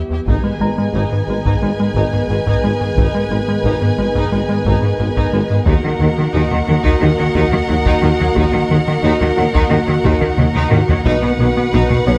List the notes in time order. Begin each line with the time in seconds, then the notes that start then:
Already playing: E3 B3 G4
0.10 E2 B3 E4 G4 E5
0.26 G#1 G#2 D#3 B3 D#4 G#4 B4 D#5 G#5, taiko
0.43 G#2 G#3 B3
0.60 G#1 G#2 G#3 A#5
0.77 G#2 G#3 B3
0.94 G#1 G#2 D#4
1.11 G#2 B3
1.28 G#1 G#2 G#3
1.45 G#2 D#4, taiko
1.62 G#1 G#2 G#3 B3
1.79 G#2 G#3
1.95 G#1 G#2 D#4, taiko
2.13 G#2 B3
2.29 G#1 G#2 G#3
2.47 G#2 D#4, taiko
2.63 G#1 G#2 G#3 B3
2.81 G#2 G#3
2.97 G#1 G#2 D#4, taiko
3.15 G#2 G#3 B3
3.31 G#1 G#2 G#3
3.48 G#2 G#3 B3
3.64 G#1 G#2 D#4
3.82 G#2 B3
3.98 G#1 G#2 G#3
4.15 G#2 D#4, taiko
4.32 G#1 G#2 G#3 B3
4.49 G#2 G#3
4.66 G#1 G#2 D#4, taiko
4.83 G#2 B3
5.00 G#1 G#2 G#3
5.16 G#2 D#4, taiko
5.33 G#1 G#2 G#3 B3
5.50 G#2 G#3
5.66 D#2 D#3 A#3 D#4 F#4 A#4 D#5 F#5, taiko
5.82 D#3 A#3
5.99 D#2 D#3 F#3
6.16 D#3 A#3
6.33 D#2 D#3 D#4
6.50 D#2 D#3 A#3, taiko low
6.66 D#2 D#3 F#3
6.83 D#2 D#3 D#4, taiko
6.99 D#2 D#3 A#3 A#4
7.18 D#3 F#3, taiko low
7.35 D#2 D#3 D#4, taiko
7.51 D#2 D#3 A#3, taiko low
7.68 D#2 D#3 F#3
7.85 D#2 D#3 D#4, taiko
8.02 D#2 D#3 A#3
8.19 D#2 D#3 F#3, taiko low
8.36 D#2 D#3 D#4, taiko
8.53 D#3 A#3
8.69 D#2 D#3 F#3
8.87 D#3 A#3
9.03 D#2 D#3 D#4
9.21 D#2 D#3 A#3, taiko low
9.37 D#2 D#3 F#3 F#4 F#5
9.53 D#2 D#3 D#4, taiko
9.70 D#2 D#3 A#3
9.87 D#3 F#3, taiko low
10.04 D#2 D#3 D#4 D#5, taiko
10.21 D#2 D#3 A#3, taiko low
10.38 D#2 D#3 F#3, taiko mid
10.55 D#2 D#3 D#4, taiko mid
10.71 D#2 D#3 A#3, taiko low-mid
10.89 D#2 D#3 F#3, taiko low
11.05 B1 B2 D#3 B3 D#4 F#4 B4 F#5, taiko
11.23 B2 B3
11.39 B1 B2 F#3 B3
11.56 B2 B3
11.73 B1 B2 D#4
11.90 B2 B3, taiko low
12.06 B1 B2 F#3 B3 C#5